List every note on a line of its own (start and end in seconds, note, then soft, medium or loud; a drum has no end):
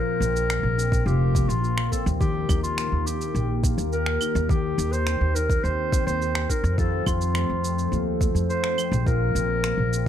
0.00 2.26 A#2 medium
0.00 2.21 F3 medium
0.00 3.13 C4 medium
0.00 1.06 F4 medium
0.00 1.07 A#4 loud
0.00 2.98 C5 medium
0.07 5.41 A#4 medium
0.20 0.59 A#1 medium
0.20 0.77 C4 medium
0.20 shaker medium
0.36 shaker soft
0.49 1.34 A#3 medium
0.49 finger snap medium
0.49 shaker soft
0.63 1.01 A#1 medium
0.78 1.92 C4 medium
0.78 shaker medium
0.92 kick medium
0.92 shaker soft
1.06 1.44 F1 medium
1.06 1.63 F4 medium
1.06 1.51 G4 medium
1.06 shaker soft
1.35 2.77 A#3 medium
1.35 kick medium
1.35 shaker medium
1.49 1.87 A#1 medium
1.49 1.92 F4 medium
1.49 shaker soft
1.63 4.16 F4 medium
1.63 shaker soft
1.78 finger snap medium
1.92 4.92 C4 medium
1.92 2.05 A4 medium
1.92 kick medium
1.92 shaker medium
2.06 2.44 D#2 loud
2.06 shaker soft
2.21 6.78 D#3 medium
2.21 4.49 D#3 medium
2.21 2.60 G4 medium
2.21 3.34 G4 medium
2.21 kick loud
2.21 shaker soft
2.42 7.69 G4 medium
2.49 2.87 D#2 medium
2.49 3.06 D#4 medium
2.49 kick medium
2.49 claves soft
2.49 shaker medium
2.63 5.41 A#3 medium
2.63 3.08 F4 medium
2.63 shaker soft
2.78 3.63 A#3 medium
2.78 finger snap medium
2.78 shaker soft
2.92 3.30 D#2 medium
3.06 4.21 D#4 medium
3.06 3.65 G4 medium
3.06 shaker medium
3.21 shaker soft
3.35 3.73 A#1 medium
3.35 3.91 G4 medium
3.35 shaker soft
3.63 6.85 A#3 medium
3.63 kick loud
3.63 shaker medium
3.78 4.16 D#2 medium
3.78 shaker soft
3.92 4.49 G4 medium
3.92 4.51 A#4 loud
3.92 shaker soft
4.06 finger snap medium
4.21 4.78 D#4 medium
4.21 claves medium
4.21 shaker medium
4.35 4.73 D#2 medium
4.35 shaker soft
4.49 6.83 D#3 medium
4.49 4.94 G4 medium
4.49 5.64 G4 medium
4.49 kick loud
4.49 shaker soft
4.63 10.08 C4 medium
4.78 5.16 D#2 medium
4.78 5.35 D#4 medium
4.78 shaker medium
4.93 5.37 C5 loud
4.93 shaker soft
5.07 5.93 C4 medium
5.07 finger snap medium
5.07 shaker soft
5.21 5.59 D#2 medium
5.35 6.49 D#4 medium
5.35 5.65 A#4 medium
5.35 shaker medium
5.48 10.08 C5 medium
5.48 kick loud
5.48 shaker soft
5.64 6.02 D#2 medium
5.64 6.21 G4 medium
5.64 6.06 C5 loud
5.64 shaker soft
5.92 7.06 C4 medium
5.92 kick loud
5.92 shaker medium
6.07 6.45 D#2 medium
6.07 6.51 C5 loud
6.07 shaker soft
6.21 8.57 G4 medium
6.21 shaker soft
6.35 finger snap medium
6.50 9.20 D#4 medium
6.50 6.78 A#4 medium
6.50 kick medium
6.50 shaker medium
6.64 7.02 F2 medium
6.64 shaker soft
6.78 9.12 F2 medium
6.78 10.08 F3 medium
6.78 7.92 F4 medium
6.78 7.05 A4 medium
6.78 kick loud
6.78 shaker soft
7.06 7.45 F2 medium
7.06 7.64 C4 medium
7.06 8.19 F4 medium
7.06 kick medium
7.06 claves medium
7.06 shaker medium
7.21 shaker soft
7.35 8.21 A3 medium
7.35 finger snap medium
7.35 shaker soft
7.49 7.88 F2 medium
7.49 9.07 A4 medium
7.64 8.78 C4 medium
7.64 shaker medium
7.79 shaker soft
7.92 8.30 D#2 medium
7.92 8.49 F4 medium
7.92 shaker soft
8.21 9.70 A3 medium
8.21 kick loud
8.21 shaker medium
8.35 8.73 F2 medium
8.35 shaker soft
8.49 9.07 F4 medium
8.49 9.03 C5 loud
8.49 shaker soft
8.64 finger snap medium
8.78 9.35 C4 medium
8.78 claves medium
8.78 shaker medium
8.92 9.30 A#1 loud
8.92 shaker soft
9.06 10.08 A#2 medium
9.06 10.08 F4 medium
9.06 10.08 A#4 loud
9.06 kick loud
9.06 shaker soft
9.27 10.08 A#4 medium
9.35 9.73 A#1 medium
9.35 9.92 C4 medium
9.35 shaker medium
9.64 10.08 A#3 medium
9.64 finger snap medium
9.64 shaker soft
9.77 10.08 A#1 medium
9.92 10.08 C4 medium
9.92 shaker medium